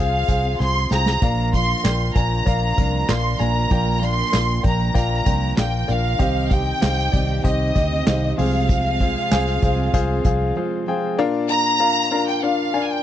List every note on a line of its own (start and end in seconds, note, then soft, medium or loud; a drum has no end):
0.00 0.23 C2 medium
0.00 1.18 C3 medium
0.00 1.24 C3 medium
0.00 1.19 C4 medium
0.00 0.28 F4 medium
0.00 6.16 F4 medium
0.00 0.29 G#4 medium
0.00 1.19 G#4 medium
0.00 0.29 C5 medium
0.00 0.29 F5 loud
0.00 0.56 F5 medium
0.00 0.92 G5 medium
0.28 0.54 C2 medium
0.28 0.53 F4 medium
0.28 0.54 G#4 medium
0.28 0.54 C5 medium
0.28 0.54 F5 medium
0.28 kick medium
0.28 closed hi-hat medium
0.60 0.85 C2 medium
0.60 0.85 F4 medium
0.60 0.85 G#4 medium
0.60 0.85 C5 medium
0.60 0.85 F5 medium
0.60 0.91 C6 medium
0.60 snare medium
0.91 1.16 C2 medium
0.91 1.16 F4 medium
0.91 1.16 G#4 medium
0.91 1.16 C5 medium
0.91 1.16 G5 medium
0.91 1.50 A#5 medium
0.91 snare medium
1.06 snare medium
1.21 1.73 A#1 medium
1.21 1.53 A#2 medium
1.21 2.12 A#2 medium
1.21 1.51 F3 medium
1.21 1.52 A#3 medium
1.21 6.17 A#3 medium
1.21 1.53 D4 medium
1.21 6.17 D4 medium
1.21 1.47 F4 medium
1.21 1.47 A#4 medium
1.21 1.54 A#4 medium
1.21 1.47 D5 medium
1.21 1.47 F5 loud
1.21 kick loud
1.21 closed hi-hat medium
1.52 2.13 F3 medium
1.52 2.15 A#3 medium
1.52 2.16 D4 medium
1.52 1.78 F4 medium
1.52 1.78 A#4 soft
1.52 2.16 A#4 medium
1.52 1.79 D5 soft
1.52 1.79 F5 medium
1.52 2.12 C6 loud
1.52 kick medium
1.52 closed hi-hat medium
1.84 2.10 A#1 medium
1.84 2.09 F4 medium
1.84 2.09 A#4 medium
1.84 2.09 D5 medium
1.84 2.09 G5 medium
1.84 snare medium
1.84 clap medium
1.84 closed hi-hat medium
1.84 tambourine medium
2.15 2.41 A#1 medium
2.15 2.76 F3 medium
2.15 2.77 A#3 medium
2.15 2.78 D4 medium
2.15 2.40 F4 medium
2.15 2.40 A#4 medium
2.15 2.79 A#4 medium
2.15 2.40 D5 medium
2.15 2.40 G#5 medium
2.15 3.09 A#5 medium
2.15 kick medium
2.15 closed hi-hat medium
2.46 2.72 A#1 medium
2.46 2.71 F4 medium
2.46 2.71 A#4 medium
2.46 2.71 D5 medium
2.46 2.71 F5 loud
2.46 kick medium
2.46 closed hi-hat medium
2.77 3.03 C2 medium
2.77 3.06 F3 medium
2.77 3.08 A#3 medium
2.77 3.09 D4 medium
2.77 3.02 F4 medium
2.77 3.02 A#4 medium
2.77 3.10 A#4 medium
2.77 3.03 D5 medium
2.77 3.03 F5 medium
2.77 kick medium
2.77 closed hi-hat medium
3.08 3.34 A#1 medium
3.08 3.38 F3 medium
3.08 3.39 A#3 medium
3.08 3.40 D4 medium
3.08 3.33 F4 medium
3.08 3.34 A#4 medium
3.08 3.41 A#4 medium
3.08 3.33 D5 medium
3.08 3.34 F5 medium
3.08 3.40 C6 medium
3.08 snare loud
3.08 clap loud
3.08 closed hi-hat medium
3.08 tambourine medium
3.39 3.66 A#1 medium
3.39 3.69 F3 medium
3.39 3.70 A#3 medium
3.39 3.71 D4 medium
3.39 3.65 F4 medium
3.39 3.65 A#4 medium
3.39 3.71 A#4 medium
3.39 3.65 D5 medium
3.39 3.65 G#5 medium
3.39 4.02 A#5 medium
3.39 closed hi-hat medium
3.70 4.22 A#1 medium
3.70 4.02 A#2 medium
3.70 4.61 A#2 medium
3.70 4.00 F3 medium
3.70 4.01 A#3 medium
3.70 4.02 D4 medium
3.70 3.96 F4 medium
3.70 3.96 A#4 medium
3.70 4.03 A#4 medium
3.70 3.96 D5 medium
3.70 3.96 G5 medium
3.70 kick loud
3.70 closed hi-hat medium
4.01 4.62 F3 medium
4.01 4.63 A#3 medium
4.01 4.65 D4 medium
4.01 4.27 F4 medium
4.01 4.27 A#4 soft
4.01 4.66 A#4 medium
4.01 4.27 D5 medium
4.01 4.27 F5 medium
4.01 4.65 C6 loud
4.01 closed hi-hat medium
4.32 4.59 A#1 medium
4.32 4.58 F4 medium
4.32 4.58 A#4 medium
4.32 4.58 D5 medium
4.32 4.58 F5 medium
4.32 snare medium
4.32 clap medium
4.32 closed hi-hat medium
4.32 tambourine medium
4.63 4.90 A#1 medium
4.63 5.24 F3 medium
4.63 5.25 A#3 medium
4.63 5.26 D4 medium
4.63 4.89 F4 medium
4.63 4.89 A#4 soft
4.63 5.27 A#4 medium
4.63 4.89 D5 medium
4.63 4.89 G5 medium
4.63 5.54 A#5 medium
4.63 kick medium
4.63 closed hi-hat medium
4.94 5.21 A#1 medium
4.94 5.20 F4 medium
4.94 5.20 A#4 medium
4.94 5.20 D5 medium
4.94 5.20 G5 medium
4.94 kick medium
4.94 closed hi-hat loud
5.25 5.52 C2 medium
5.25 5.55 F3 medium
5.25 5.56 A#3 medium
5.25 5.57 D4 medium
5.25 5.51 F4 medium
5.25 5.51 A#4 medium
5.25 5.58 A#4 medium
5.25 5.51 D5 medium
5.25 5.51 G5 medium
5.25 kick medium
5.25 closed hi-hat medium
5.56 5.83 A#1 medium
5.56 5.87 F3 medium
5.56 5.88 A#3 medium
5.56 5.89 D4 medium
5.56 5.82 F4 medium
5.56 5.82 A#4 medium
5.56 5.90 A#4 medium
5.56 5.82 D5 medium
5.56 5.82 F5 medium
5.56 5.89 G5 medium
5.56 snare loud
5.56 clap medium
5.56 closed hi-hat loud
5.56 tambourine medium
5.87 6.14 A#1 medium
5.87 6.20 F3 medium
5.87 6.20 A#3 soft
5.87 6.21 D4 medium
5.87 6.13 F4 medium
5.87 6.14 A#4 medium
5.87 6.21 A#4 medium
5.87 6.14 D5 medium
5.87 6.14 F5 medium
5.87 6.52 F5 medium
5.87 closed hi-hat medium
6.19 6.71 C2 medium
6.19 7.09 C3 medium
6.19 6.51 C3 medium
6.19 11.14 C3 medium
6.19 6.49 D#3 medium
6.19 11.14 C4 medium
6.19 6.50 C4 medium
6.19 6.44 D#4 loud
6.19 8.36 D#4 medium
6.19 6.51 D#4 medium
6.19 6.45 G4 medium
6.19 8.36 G4 medium
6.19 6.52 G4 medium
6.19 6.45 C5 medium
6.19 6.45 D#5 medium
6.19 kick medium
6.19 closed hi-hat medium
6.49 7.11 D#3 medium
6.49 7.13 C4 medium
6.49 6.76 D#4 medium
6.49 7.14 D#4 medium
6.49 6.75 G4 medium
6.49 7.15 G4 medium
6.49 6.76 C5 medium
6.49 6.76 D#5 medium
6.49 7.45 G5 loud
6.49 kick medium
6.49 closed hi-hat medium
6.81 7.08 C2 medium
6.81 7.07 D#4 medium
6.81 7.07 G4 medium
6.81 7.07 C5 medium
6.81 7.07 F5 medium
6.81 snare loud
6.81 clap medium
6.81 closed hi-hat medium
6.81 tambourine medium
6.98 snare soft
7.12 7.39 C2 medium
7.12 7.74 D#3 medium
7.12 7.76 C4 medium
7.12 7.38 D#4 medium
7.12 7.76 D#4 medium
7.12 7.38 G4 medium
7.12 7.77 G4 medium
7.12 7.38 C5 medium
7.12 7.38 D5 medium
7.12 kick medium
7.12 closed hi-hat medium
7.44 7.70 C2 medium
7.44 7.69 D#4 medium
7.44 7.69 G4 medium
7.44 7.69 C5 medium
7.44 7.70 D#5 loud
7.44 8.35 D#5 medium
7.44 kick medium
7.44 closed hi-hat loud
7.75 8.01 D2 medium
7.75 8.05 D#3 medium
7.75 8.06 C4 medium
7.75 8.00 D#4 medium
7.75 8.07 D#4 medium
7.75 8.00 G4 medium
7.75 8.08 G4 medium
7.75 8.01 C5 medium
7.75 8.00 D#5 medium
7.75 kick medium
7.75 closed hi-hat medium
8.06 8.33 C2 loud
8.06 8.37 D#3 medium
8.06 8.38 C4 medium
8.06 8.32 D#4 medium
8.06 8.39 D#4 medium
8.06 8.32 G4 medium
8.06 8.39 G4 medium
8.06 8.32 C5 medium
8.06 8.32 F5 medium
8.06 snare loud
8.06 clap medium
8.06 closed hi-hat medium
8.06 tambourine medium
8.37 9.15 C2 medium
8.37 9.27 C3 medium
8.37 8.68 F3 medium
8.37 8.69 G#3 medium
8.37 8.69 C4 medium
8.37 8.88 F4 medium
8.37 11.16 F4 medium
8.37 8.70 F4 medium
8.37 8.88 G#4 medium
8.37 11.16 G#4 medium
8.37 8.88 C5 medium
8.37 8.88 F5 medium
8.37 10.53 F5 medium
8.37 open hi-hat medium
8.68 9.00 C3 medium
8.68 8.98 F3 medium
8.68 9.00 G#3 medium
8.68 9.01 C4 medium
8.68 9.01 F4 medium
8.68 kick loud
8.68 closed hi-hat medium
9.00 9.61 F3 medium
9.00 9.62 G#3 medium
9.00 9.63 C4 medium
9.00 9.25 F4 medium
9.00 9.65 F4 medium
9.00 9.25 G#4 medium
9.00 9.26 C5 medium
9.00 9.26 F5 medium
9.00 kick medium
9.00 closed hi-hat medium
9.31 9.57 C2 medium
9.31 9.57 F4 medium
9.31 9.57 G#4 medium
9.31 9.57 C5 medium
9.31 9.57 G#5 loud
9.31 snare loud
9.31 clap medium
9.31 closed hi-hat medium
9.31 tambourine medium
9.47 snare soft
9.62 9.88 C2 medium
9.62 10.23 F3 medium
9.62 10.24 G#3 medium
9.62 10.25 C4 medium
9.62 9.88 F4 medium
9.62 10.27 F4 medium
9.62 9.88 G#4 medium
9.62 9.88 C5 medium
9.62 9.88 F5 medium
9.62 kick medium
9.62 closed hi-hat medium
9.94 10.19 C2 medium
9.94 10.19 F4 loud
9.94 10.19 G#4 loud
9.94 10.19 C5 loud
9.94 10.19 F5 loud
9.94 kick medium
9.94 closed hi-hat medium
10.23 10.51 C2 medium
10.23 10.53 F3 medium
10.23 10.55 G#3 medium
10.23 10.56 C4 medium
10.23 10.50 F4 medium
10.23 10.57 F4 medium
10.23 10.50 G#4 medium
10.23 10.50 C5 medium
10.23 10.50 F5 loud
10.23 kick medium
10.23 closed hi-hat medium
10.55 10.85 F3 medium
10.55 10.86 G#3 medium
10.55 10.87 C4 medium
10.55 10.81 F4 medium
10.55 10.88 F4 medium
10.55 10.81 G#4 medium
10.55 10.81 C5 medium
10.55 10.81 F5 medium
10.86 11.18 F3 medium
10.86 11.18 G#3 medium
10.86 11.19 C4 medium
10.86 11.13 F4 medium
10.86 11.19 F4 medium
10.86 11.13 G#4 medium
10.86 11.13 C5 medium
10.86 11.13 G5 loud
11.19 12.08 A#2 medium
11.19 11.43 D4 loud
11.19 11.44 F4 loud
11.19 11.43 A#4 loud
11.19 11.43 D5 loud
11.19 11.44 F5 loud
11.49 11.74 D4 medium
11.49 11.74 F4 medium
11.49 11.74 D5 medium
11.49 11.74 F5 medium
11.49 12.23 A#5 loud
11.80 12.05 D4 medium
11.80 12.05 F4 medium
11.80 12.05 A#4 medium
11.80 12.05 D5 medium
11.80 12.05 F5 loud
12.11 12.37 D4 medium
12.11 12.37 F4 medium
12.11 12.37 A#4 medium
12.11 12.37 D5 medium
12.11 12.37 F5 medium
12.28 12.43 G5 loud
12.43 12.68 D4 medium
12.43 12.68 F4 medium
12.43 12.68 A#4 medium
12.43 12.68 D5 medium
12.43 12.68 F5 medium
12.43 12.83 F5 medium
12.74 12.99 D4 medium
12.74 12.99 F4 medium
12.74 12.99 A#4 medium
12.74 12.99 D5 medium
12.74 12.99 G#5 medium
12.83 12.90 G#5 medium
12.90 13.03 G5 loud